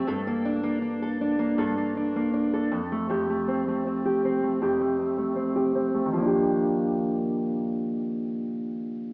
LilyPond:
\new Staff \with { instrumentName = "Steel-string acoustic guitar" } { \time 4/4 \key ees \lydian \tempo 4 = 79 <g, a'>16 bes16 d'16 bes16 d'16 a'16 d'16 bes16 <g, a'>16 bes16 d'16 bes16 d'16 a'16 f,16 a16 | <f, g'>16 a16 c'16 a16 c'16 g'16 c'16 a16 <f, g'>16 a16 c'16 a16 c'16 g'16 c'16 a16 | <ees f bes d' g'>1 | }